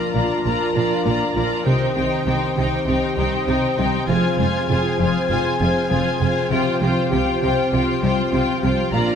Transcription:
Already playing: F3 D4 F4 A#4 D5 A#5
0.14 A#1 A#2 A#3 F4 D5 A#5
0.45 A#1 A#2 F4 D5 A#5
0.75 A#1 A#2 F4 D5 A#5
1.06 A#1 A#2 A#3 F4 D5 A#5
1.36 A#1 A#2 F4 D5 A#5
1.66 C2 C3 D#3 C4 D#4 G4 C5 G5
1.96 C2 C3 D#3 D#4 C5 G5
2.27 C2 C3 C4 D#4 C5 G5
2.57 C2 C3 D#4 C5 G5
2.87 C2 C3 D#4 C5 G5
3.17 C2 C3 G3 D#4 C5 G5
3.48 C2 C3 D#4 C5 G5
3.78 C2 C3 G3 D#4 C5 G5
4.08 F1 F2 F3 F4 G#4 C5 G#5
4.38 F1 F2 G#3 F4 C5 G#5
4.69 F1 F2 F4 C5 G#5
4.99 F1 F2 F3 F4 C5 G#5
5.29 F1 F2 F4 C5 G#5
5.59 F1 F2 C4 F4 C5 G#5
5.90 F1 F2 F3 F4 C5 G#5
6.21 F1 F2 C4 F4 C5 G#5
6.51 C2 C3 C4 F4 G4 C5 G5
6.81 C2 C3 F3 F4 C5 G5
7.12 C2 C3 C4 F4 C5 G5
7.42 C2 C3 F4 C5 G5
7.72 C2 C3 F4 C5 G5
8.03 C2 C3 G3 F4 C5 G5
8.33 C2 C3 F4 C5 G5
8.63 C2 C3 G3 F4 C5 G5
8.93 A#1 A#2 A#3 D4 F4 A#4 D5 A#5

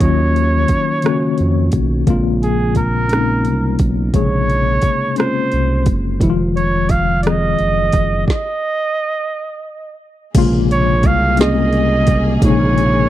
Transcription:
Already playing: F3 A#3 C#4 D#4 F#4
0.00 D#2 D#3 F#3 A#3 C#4 F4 C#5, kick, closed hi-hat
0.36 closed hi-hat
0.68 F2, kick, closed hi-hat
1.02 C#3 D#3 A#3 C#4 F#4, cross-stick, closed hi-hat
1.38 F2, closed hi-hat
1.72 B1, kick, closed hi-hat
2.06 A#1 C#3 G#3 A#3 C4 F4, kick, closed hi-hat
2.43 G#4, closed hi-hat
2.75 A#4, kick, closed hi-hat
3.09 G#3 A#3 C4 C#4 D#4, cross-stick, closed hi-hat
3.45 C2, closed hi-hat
3.79 B1, kick, closed hi-hat
4.13 A#1 C3 G#3 A#3 G#4 C#5, kick, closed hi-hat
4.19 C#3
4.50 closed hi-hat
4.82 C2, kick, closed hi-hat
5.16 G#3 A#3 C4 C#4 F4 C5, cross-stick, closed hi-hat
5.52 C2, closed hi-hat
5.86 F#1, kick, closed hi-hat
6.20 F1 C3 D#3 F3 G#3 E4, kick, closed hi-hat
6.30 F4
6.56 C#5, closed hi-hat
6.89 F5, kick, closed hi-hat
7.23 D#3 F3 G#3 C4 D#5, cross-stick, closed hi-hat
7.27 G#4
7.59 F#1, closed hi-hat
7.92 F#1, kick, closed hi-hat
8.27 D#5, kick, snare
10.34 A#1 A#2 C3 C#3 G#3 A#3 F4 G#4, kick, closed hi-hat, crash
10.71 C#5, closed hi-hat
11.03 C2 F5, kick, closed hi-hat
11.37 G#3 A#3 C4 C#4 G#4 D#5, snare, closed hi-hat
11.73 closed hi-hat
12.07 kick, closed hi-hat
12.36 D#5
12.41 A#1 C3 G#3 A#3 C#5, kick, closed hi-hat
12.45 C#3 D#4
12.78 closed hi-hat

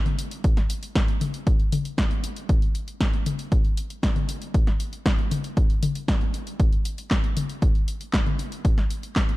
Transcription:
0.06 closed hi-hat, high tom
0.19 closed hi-hat
0.31 closed hi-hat
0.44 kick, closed hi-hat
0.57 snare, closed hi-hat
0.70 closed hi-hat
0.83 closed hi-hat
0.95 kick, snare, closed hi-hat
1.08 closed hi-hat
1.21 closed hi-hat, high tom
1.34 closed hi-hat
1.47 kick, closed hi-hat
1.60 closed hi-hat
1.72 closed hi-hat, high tom
1.85 closed hi-hat
1.98 kick, snare, closed hi-hat
2.11 closed hi-hat
2.24 closed hi-hat
2.36 closed hi-hat
2.49 kick, closed hi-hat
2.62 closed hi-hat
2.75 closed hi-hat
2.88 closed hi-hat
3.01 kick, snare, closed hi-hat
3.13 closed hi-hat
3.26 closed hi-hat, high tom
3.39 closed hi-hat
3.52 kick, closed hi-hat
3.65 closed hi-hat
3.77 closed hi-hat
3.90 closed hi-hat
4.03 kick, snare, closed hi-hat
4.16 closed hi-hat, high tom
4.29 closed hi-hat
4.42 closed hi-hat
4.54 kick, closed hi-hat
4.67 snare, closed hi-hat
4.80 closed hi-hat
4.93 closed hi-hat
5.06 kick, snare, closed hi-hat
5.19 closed hi-hat
5.31 closed hi-hat, high tom
5.44 closed hi-hat
5.57 kick, closed hi-hat
5.70 closed hi-hat
5.83 closed hi-hat, high tom
5.95 closed hi-hat
6.08 kick, snare, closed hi-hat
6.21 closed hi-hat
6.34 closed hi-hat
6.47 closed hi-hat
6.60 kick, closed hi-hat
6.73 closed hi-hat
6.85 closed hi-hat
6.98 closed hi-hat
7.11 kick, snare, clap, closed hi-hat
7.24 closed hi-hat
7.37 closed hi-hat, high tom
7.50 closed hi-hat
7.62 kick, closed hi-hat
7.75 closed hi-hat
7.88 closed hi-hat
8.01 closed hi-hat
8.13 kick, snare, clap, closed hi-hat
8.26 closed hi-hat, high tom
8.39 closed hi-hat
8.52 closed hi-hat
8.65 kick, closed hi-hat
8.78 snare, closed hi-hat
8.90 closed hi-hat
9.03 closed hi-hat
9.16 kick, snare, clap, closed hi-hat
9.29 closed hi-hat

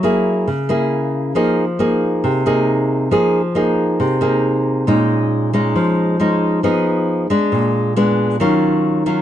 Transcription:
Already playing: F#3
0.03 A#3 E4 G#4
0.47 C#3
0.69 A#3 E4 G#4
1.35 F3 A#3 D#4 G#4
1.79 A#3 D#4 G#4
2.24 C3
2.46 A#3 D#4 G#4
3.11 F3 A#3 D#4 G#4
3.55 A#3 D#4 G#4
4.00 C3
4.21 A#3 D#4 G#4
4.87 A#2 G#3 C#4 D#4
5.53 G#3 C#4 D#4
5.75 F3
6.20 G#3 C#4 D#4
6.63 F3 B3 D#4 G#4
7.30 G#3 D4
7.52 A#2
7.96 G#3 B3 D4
8.40 D#3 F#3 C#4 F4
9.06 F#3 C#4 F4

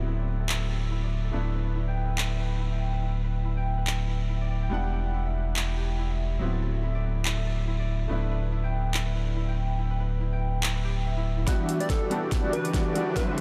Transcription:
Already playing: D1 F#3 B3 C4 E4 G4 A4 E5
0.07 E4
0.18 D5
0.40 A4
0.49 E4, clap
0.70 A4
0.91 E4
1.03 D5
1.24 A4
1.31 D1 A3 B3 D4 E4
1.55 B4
1.76 E4
1.88 G5
2.09 B4
2.18 E4, clap
2.39 B4
2.60 E4
2.72 G5
2.93 B4
3.03 E4
3.24 B4
3.45 E4
3.57 G5
3.78 B4
3.87 E4, clap
4.08 E4
4.29 E4
4.41 D5
4.51 D5
4.62 G5
4.70 E1 G3 B3 D4 E4 F#5
4.83 G4
4.93 G4
5.14 E4
5.26 E5
5.56 E4, clap
5.68 G4
5.77 G4
5.98 E4
6.10 E5
6.39 D1 F#3 B3 C4 E4
6.43 E4
6.52 A4
6.62 A4
6.83 E4
6.95 D5
7.25 E4, clap
7.37 A4
7.47 A4
7.68 E4
7.79 D5
8.08 D1 A3 B3 D4 E4
8.12 E4
8.22 B4
8.31 B4
8.52 E4
8.64 G5
8.94 E4, clap
9.06 B4
9.15 B4
9.36 E4
9.48 G5
9.79 E4
9.90 B4
10.00 B4
10.21 E4
10.33 G5
10.63 E4, clap
10.75 B4
10.84 G4
11.05 E5
11.17 E4
11.38 E4
11.46 E1 E3 G3 B3 D4 F#4 G4 E5, kick, snare, closed hi-hat, riser
11.69 closed hi-hat
11.79 G3 B3 D4 G4 D5, closed hi-hat
11.90 A4, kick, snare, closed hi-hat
12.10 E1 E3 G3 B3 D4 F#4 G4 A4 D5, closed hi-hat
12.32 kick, snare, closed hi-hat
12.43 G3 B3 D4 F#4
12.53 B4, closed hi-hat
12.65 closed hi-hat
12.73 G3 B3 D4 F#4, kick, snare, closed hi-hat
12.95 G3 B3 D4 F#4, closed hi-hat
13.16 D3 F#3 B3 C4 D4 E4 F#4 B4 C5 E5, kick, snare, closed hi-hat

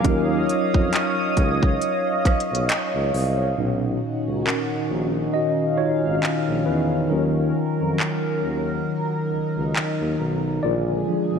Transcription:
Already playing: F5
0.01 D#2 F#3 C#4 C#5 D#5 D#6, kick, closed hi-hat
0.06 D#4 F4
0.10 A#4
0.49 closed hi-hat
0.74 F2, kick
0.93 clap, closed hi-hat
1.37 C#2, kick, closed hi-hat
1.63 kick
1.82 closed hi-hat
2.25 B1, kick, cross-stick, closed hi-hat
2.40 closed hi-hat
2.51 B1, closed hi-hat
2.69 clap, closed hi-hat
2.95 C#2
3.14 C2, open hi-hat
3.57 B1 A#2 D#3 C#4 D#4 F#4
4.28 C#2
4.45 C#4 A#4, clap
4.91 A#1
5.34 F#4 D#5 F5
5.78 G#1 F4 C#5
6.04 G#1
6.23 clap
6.48 A#1
6.66 E2 D#4 B4
7.10 D#2 F#3 C#4 F4 A#4
7.81 F2
8.00 clap
8.43 D#2
8.87 D#4
9.31 C#2
9.57 C#2
9.76 clap
10.01 D#2
10.20 B1
10.63 A#1 D3 F3 G#3 F4 G#4 D5
11.08 F3 G#3 D4
11.34 B1

